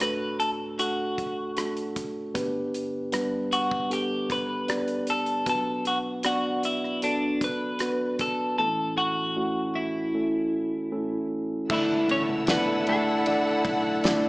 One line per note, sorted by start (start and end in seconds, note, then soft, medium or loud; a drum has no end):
0.00 2.31 D2 soft
0.00 2.31 A2 soft
0.00 0.79 A3 medium
0.00 0.79 D4 medium
0.00 0.79 F#4 medium
0.00 0.80 A4 medium
0.00 0.39 B4 medium
0.00 cross-stick medium
0.00 closed hi-hat medium
0.40 0.50 A4 medium
0.40 closed hi-hat medium
0.79 1.53 A3 medium
0.79 1.53 D4 soft
0.79 1.53 F#4 soft
0.79 1.92 F#4 medium
0.79 1.53 A4 medium
0.79 closed hi-hat medium
1.18 kick medium
1.18 closed hi-hat medium
1.57 2.31 A3 medium
1.57 2.31 D4 medium
1.57 2.31 F#4 soft
1.57 2.31 A4 medium
1.57 cross-stick medium
1.57 closed hi-hat medium
1.77 closed hi-hat soft
1.96 kick medium
1.96 closed hi-hat medium
2.34 5.42 G2 medium
2.34 5.42 D3 medium
2.34 3.09 B3 medium
2.34 3.09 D4 medium
2.34 3.09 G4 medium
2.34 3.09 B4 medium
2.34 kick medium
2.34 closed hi-hat medium
2.74 closed hi-hat medium
3.12 3.87 G3 medium
3.12 3.87 B3 medium
3.12 3.86 D4 medium
3.12 3.87 B4 medium
3.12 cross-stick medium
3.12 closed hi-hat medium
3.52 3.92 F#4 medium
3.52 closed hi-hat medium
3.71 kick medium
3.90 4.64 B3 medium
3.90 4.64 D4 medium
3.90 4.64 G4 soft
3.90 4.32 G4 medium
3.90 4.65 A4 medium
3.90 closed hi-hat medium
4.30 5.10 B4 medium
4.30 kick medium
4.30 closed hi-hat medium
4.68 5.42 B3 medium
4.68 5.42 D4 medium
4.68 5.43 G4 soft
4.68 5.43 D5 medium
4.68 cross-stick medium
4.68 closed hi-hat medium
4.88 closed hi-hat soft
5.07 5.48 A4 medium
5.07 closed hi-hat medium
5.26 closed hi-hat soft
5.46 8.54 B2 medium
5.46 8.54 F#3 soft
5.46 6.20 B3 medium
5.46 6.20 D4 medium
5.46 6.21 F#4 medium
5.46 5.87 A4 medium
5.46 6.21 B4 medium
5.46 kick medium
5.46 closed hi-hat medium
5.85 5.98 F#4 medium
5.85 closed hi-hat medium
6.23 6.99 B3 medium
6.23 6.98 D4 medium
6.23 6.99 F#4 medium
6.23 6.61 F#4 medium
6.23 6.99 D5 medium
6.23 cross-stick medium
6.23 closed hi-hat medium
6.63 7.01 E4 medium
6.63 closed hi-hat medium
6.84 cross-stick soft
7.02 7.77 B3 medium
7.02 7.77 D4 medium
7.02 7.43 D4 medium
7.02 7.77 F#4 soft
7.02 7.77 A4 medium
7.02 closed hi-hat medium
7.41 8.17 B4 medium
7.41 kick medium
7.41 closed hi-hat medium
7.79 8.55 B3 medium
7.79 8.54 D4 medium
7.79 8.55 F#4 medium
7.79 8.55 B4 medium
7.79 cross-stick medium
7.79 closed hi-hat medium
8.19 8.57 A4 medium
8.19 kick medium
8.19 closed hi-hat medium
8.58 11.66 A2 medium
8.58 11.66 E3 medium
8.58 9.32 A3 medium
8.58 8.65 B3 soft
8.58 9.32 E4 medium
8.58 8.97 A4 medium
8.58 9.33 A4 medium
8.65 9.35 C#4 medium
8.98 9.78 F#4 medium
9.36 10.10 A3 medium
9.36 10.10 C#4 medium
9.36 10.10 E4 medium
9.36 10.10 F#4 medium
9.75 11.27 E4 medium
10.14 10.88 A3 soft
10.14 10.88 C#4 soft
10.14 10.88 E4 medium
10.14 10.88 A4 medium
10.92 11.66 A3 medium
10.92 11.66 C#4 medium
10.92 11.66 E4 medium
10.92 11.66 A4 medium
11.69 12.24 D2 loud
11.69 12.83 A2 medium
11.69 12.08 D3 medium
11.69 12.44 D3 medium
11.69 12.09 E3 medium
11.69 12.07 E3 medium
11.69 12.08 A3 medium
11.69 12.44 A3 medium
11.69 12.09 D4 medium
11.69 14.29 E4 medium
11.69 12.44 E4 medium
11.69 14.29 A4 medium
11.69 12.06 A4 medium
11.69 12.45 A4 medium
11.69 14.29 E5 medium
11.69 12.44 E5 loud
11.69 14.29 F#5 loud
11.69 14.29 A5 medium
11.69 kick loud
11.69 crash medium
11.69 impact medium
11.74 12.08 E4 medium
12.07 12.47 A3 soft
12.07 12.21 C#4 medium
12.07 12.47 A4 medium
12.07 ride medium
12.11 12.22 C#5 loud
12.29 13.41 C#2 medium
12.47 12.87 E3 medium
12.47 12.86 A3 medium
12.47 12.85 A3 medium
12.47 12.85 B3 medium
12.47 12.85 D4 medium
12.47 12.85 E4 medium
12.47 12.85 A4 medium
12.47 12.84 A4 medium
12.47 12.86 D5 medium
12.47 snare medium
12.47 ride medium
12.51 12.89 B4 medium
12.85 13.24 A3 soft
12.85 13.24 A3 medium
12.85 14.29 A3 medium
12.85 13.25 D4 soft
12.85 13.24 D4 medium
12.85 13.24 E4 medium
12.85 13.25 A4 medium
12.85 13.24 A4 medium
12.85 14.29 A4 medium
12.85 13.24 D5 medium
12.85 ride medium
13.24 14.02 E3 medium
13.24 14.02 A3 medium
13.24 14.00 A3 medium
13.24 14.03 D4 medium
13.24 14.00 D4 medium
13.24 14.00 E4 medium
13.24 14.03 A4 medium
13.24 14.00 A4 medium
13.24 14.01 D5 medium
13.24 ride medium
13.65 14.29 B1 medium
13.65 kick medium
13.65 ride medium
14.02 14.29 D3 medium
14.02 14.29 E3 medium
14.02 14.29 A3 medium
14.02 14.29 D4 medium
14.02 14.29 E4 medium
14.02 14.29 A4 medium
14.02 14.29 D5 medium
14.02 snare loud
14.02 ride medium